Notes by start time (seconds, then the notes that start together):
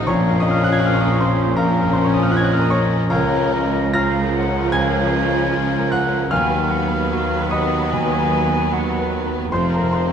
Already playing: A1 A2 D#4 F4 C5 D#5 F5 C6 D#6 F6
0.07 A#1 A#2 F3 C#4 A#4 C#5 F5 A#5 C#6
0.31 F2
0.40 D#5 D#6
0.51 C#4 F5 F6
0.63 F#5 F#6
0.71 G#5 G#6
0.79 F4 F#5 F#6
0.85 F5 F6
0.93 C#5 C#6
1.01 A#4 D#5 D#6
1.10 C#5 C#6
1.19 C5 C6
1.28 C#4
1.56 A#1 F3 C#4 A#4 F5 A#5
1.82 F2
1.92 C5 C6
2.04 C#4 C#5 C#6
2.14 D#5 D#6
2.23 F5 F6
2.29 F4 F#5 F#6
2.34 D#5 G#5 G#6
2.43 F#5 F#6
2.51 F5 F6
2.59 A#4 D#5 D#6
2.70 C#5 C#6
2.83 C#4
3.09 C#2 F3 C#4 A#4 C#5 F5 A#5
3.38 C#3
3.52 D#5
3.68 C#4
3.94 F3 C#4 F4 A#4 F5 A#5 F6 A#6
4.21 A#4
4.35 F#5
4.50 C#4
4.72 C#2 F3 C#4 F5 G#5 G#6
5.02 C#3
5.26 C#4
5.52 F4 F5
5.79 A#4
5.91 F#5 F#6
6.07 C#4
6.31 D#2 F#3 B3 B4 F5 G#5 F6
6.59 D#3
6.70 F#5
6.87 B3
7.10 F#4 F5
7.40 B4
7.51 D#5 F#5 B5 D#6
7.66 B3
7.91 D#2 F#3 B3 G#5
8.21 D#3
8.47 B3
8.72 F#4 F#5
8.99 B4
9.26 B3
9.50 F1 F2 F3 A3 C4 A4 C5 F5 C6
9.70 A#4
9.74 A#4 A#5
9.80 C3
9.90 C5 C6
9.95 C5
10.07 C4 C#5